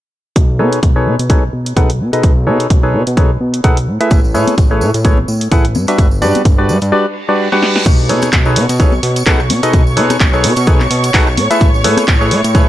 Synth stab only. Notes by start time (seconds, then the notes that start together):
0.59 B2 D#4 G#4 A4 B4 C#5
0.96 B2 D#4 G#4 A4 B4 C#5
1.30 B2 D#4 G#4 A4 B4 C#5
1.76 B2 D#4 G#4 A4 B4 F#5
2.13 B2 D#4 G#4 A4 B4 D#5
2.47 B2 D#4 G#4 A4 B4 C#5
2.83 B2 D#4 G#4 A4 B4 C#5
3.17 B2 D#4 G#4 A4 B4 C#5
3.64 D#4 G#4 A4 B4 F#5
4.01 A3 E4 G#4 A4 B4 E5
4.34 A3 E4 G#4 A4 B4 C#5
4.71 A3 E4 G#4 A4 B4 C#5
5.05 A3 E4 G#4 A4 B4 C#5
5.51 E4 G#4 A4 B4 F#5
5.88 G3 D4 F#4 G4 B4 E5
6.22 G3 D4 F#4 G4 B4 D5
6.58 G3 D4 F#4 G4 B4 D5
6.92 G3 D4 F#4 G4 B4 D5
7.29 G3 D4 F#4 G4 B4 D5
7.52 G3 D4 F#4 G4 B4 F#5
8.09 B2 D#4 G#4 A4 B4 C#5
8.46 B2 D#4 G#4 A4 B4 C#5
8.80 B2 D#4 G#4 A4 B4 C#5
9.26 B2 D#4 G#4 A4 B4 F#5
9.63 B2 D#4 G#4 A4 B4 D#5
9.97 B2 D#4 G#4 A4 B4 C#5
10.33 B2 D#4 G#4 A4 B4 C#5
10.67 B2 D#4 G#4 A4 B4 C#5
11.14 D#4 G#4 A4 B4 F#5
11.51 A3 E4 G#4 A4 B4 E5
11.84 A3 E4 G#4 A4 B4 C#5
12.21 A3 E4 G#4 A4 B4 C#5
12.55 A3 E4 G#4 A4 B4 C#5